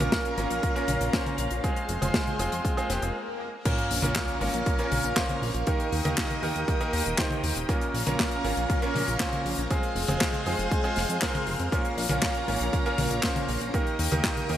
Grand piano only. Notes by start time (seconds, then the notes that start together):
0.00 A#2 A#3 C#4 F4 A#4
0.38 A#2 A#3 C#4 F4 A#4
0.76 A#2 A#3 C#4 F4 A#4
1.14 A#2 A#3 C#4 F4 C5
1.64 G#3 C4 F4 G#4
2.02 G#3 C4 F4 G#4
2.40 G#3 C4 F4 G#4
2.77 G#3 C4 F4 G#4
2.90 G#3 C4 F4 G4
3.02 G#3 C4 F4 G#4
3.65 A#2 A#3 C#4 F4 A#4
4.03 A#2 A#3 C#4 F4 A#4
4.41 A#2 A#3 C#4 F4 A#4
4.79 A#2 A#3 C#4 F4 A#4
5.17 A#2 A#3 C#4 F4 C5
5.67 D#3 A#3 D#4 G4 A#4
6.05 D#3 A#3 D#4 G4 A#4
6.43 D#3 A#3 D#4 G4 A#4
6.81 D#3 A#3 D#4 G4 A#4
7.18 D#3 A#3 D#4 G4 C5
7.69 A#2 A#3 C#4 F4 A#4
8.07 A#2 A#3 C#4 F4 A#4
8.44 A#2 A#3 C#4 F4 A#4
8.82 A#2 A#3 C#4 F4 A#4
9.20 A#2 A#3 C#4 F4 C5
9.70 G#3 C4 F4 G#4
10.08 G#3 C4 F4 G#4
10.46 G#3 C4 F4 G#4
10.84 G#3 C4 F4 G#4
11.22 G#3 C4 F4 A#4
11.72 A#2 A#3 C#4 F4 A#4
12.10 A#2 A#3 C#4 F4 A#4
12.48 A#2 A#3 C#4 F4 A#4
12.86 A#2 A#3 C#4 F4 A#4
13.24 A#2 A#3 C#4 F4 C5
13.74 D#3 A#3 D#4 G4 A#4
14.12 D#3 A#3 D#4 G4 A#4
14.50 D#3 A#3 D#4 G4 A#4